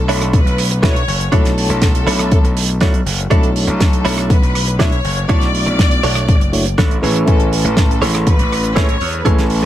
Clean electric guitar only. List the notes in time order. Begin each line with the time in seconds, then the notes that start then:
0.08 D4 E4 A4 C#5
0.71 muted clean electric guitar stroke
0.83 D4 E4 A4 B4
1.20 muted clean electric guitar stroke
1.32 D4 E4 A4 C#5
1.70 muted clean electric guitar stroke
1.82 muted clean electric guitar stroke
2.07 D4 E4 A4 C#5
2.69 muted clean electric guitar stroke
2.81 D4 E4 A4 C#5
3.19 muted clean electric guitar stroke
3.30 D4 E4 A4 C#5
3.67 muted clean electric guitar stroke
3.80 muted clean electric guitar stroke
4.05 D4 E4 A4 C#5
4.67 muted clean electric guitar stroke
4.79 D4 E4 A4 E5
5.17 muted clean electric guitar stroke
5.29 D4 E4 A4 C#5
5.66 muted clean electric guitar stroke
5.79 muted clean electric guitar stroke
6.03 D4 E4 A4 C#5
6.66 muted clean electric guitar stroke
6.78 D4 E4 A4 C#5
7.03 E4 G#4 A4 C#5
7.65 muted clean electric guitar stroke
7.77 muted clean electric guitar stroke
8.02 E4 G#4 A4 C#5
8.64 muted clean electric guitar stroke
8.76 E4 G#4 A4 C#5
9.13 muted clean electric guitar stroke
9.25 E4 G#4 A4 C#5